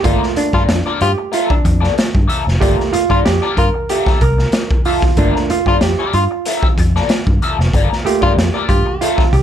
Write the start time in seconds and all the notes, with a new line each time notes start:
0.03 G1 A3 A#3 F4 A4 D5, kick, closed hi-hat
0.22 muted clean electric guitar stroke, snare
0.36 D4, muted fingered electric bass stroke, muted clean electric guitar stroke, closed hi-hat
0.53 G2 A#3 F4 A4 D5, kick
0.68 F2, muted clean electric guitar stroke, snare, closed hi-hat
0.86 A#3 F4 A4 D5
1.01 G2 F4 G4, muted clean electric guitar stroke, closed hi-hat
1.18 muted clean electric guitar stroke
1.32 A#3 F4 A4 E5, closed hi-hat
1.50 D4, kick
1.65 F2, muted clean electric guitar stroke, kick, closed hi-hat
1.80 A#3 F4 A4 D5, snare
1.95 muted clean electric guitar stroke, snare, closed hi-hat
2.15 G2, kick
2.28 A#3 F4 A4 E5, closed hi-hat
2.45 F1, muted clean electric guitar stroke, snare
2.60 G1 A3 A#3 F4 G4 A4 D5, kick, closed hi-hat
2.78 muted clean electric guitar stroke, snare
2.93 F4, muted clean electric guitar stroke, muted fingered electric bass stroke, closed hi-hat
3.10 G2 A#3 F4 A4 D5, kick
3.25 F2 G4, muted clean electric guitar stroke, snare, closed hi-hat
3.42 A#3 F4 A4 D5
3.57 G2 F4 A#4, muted clean electric guitar stroke, kick, closed hi-hat
3.74 muted clean electric guitar stroke
3.89 A#3 F4 G4 A4 E5, closed hi-hat
4.06 kick, snare
4.21 C2 A#4, muted clean electric guitar stroke, kick, closed hi-hat
4.38 muted clean electric guitar stroke, snare
4.52 muted clean electric guitar stroke, snare, closed hi-hat
4.71 kick
4.85 A#3 F4 A4 E5, open hi-hat
5.02 muted clean electric guitar stroke, kick, snare
5.17 G1 A3 A#3 D4 F4 A4 D5, kick, closed hi-hat
5.35 muted clean electric guitar stroke, snare
5.50 F4, muted fingered electric bass stroke, muted clean electric guitar stroke, closed hi-hat
5.66 G2 A#3 F4 A4 D5, kick
5.81 F2 G4, muted clean electric guitar stroke, snare, closed hi-hat
5.99 A#3 F4 A4 D5
6.13 G2 F4, muted clean electric guitar stroke, closed hi-hat
6.31 muted clean electric guitar stroke
6.45 A#3 F4 A4 E5, closed hi-hat
6.63 kick
6.77 F2, muted clean electric guitar stroke, kick, closed hi-hat
6.96 A#3 F4 A4 D5, snare
7.09 muted clean electric guitar stroke, snare, closed hi-hat
7.27 G2, kick
7.42 A#3 F4 A4 E5, closed hi-hat
7.59 F1, muted clean electric guitar stroke, snare
7.73 G1 A#3 F4 A4 D5, kick, closed hi-hat
7.91 muted clean electric guitar stroke, snare
8.05 A3 A#3 F4 G4, muted clean electric guitar stroke, muted fingered electric bass stroke, closed hi-hat
8.21 G2 A#3 F4 A4 D5, kick
8.37 F2, muted clean electric guitar stroke, snare, closed hi-hat
8.54 A#3 F4 A4 D5
8.69 G2 F4 G4, muted clean electric guitar stroke, kick, closed hi-hat
8.86 muted clean electric guitar stroke
9.01 A#3 F4 A4 E5, closed hi-hat
9.18 kick, snare
9.33 C2 G4, muted clean electric guitar stroke, kick, closed hi-hat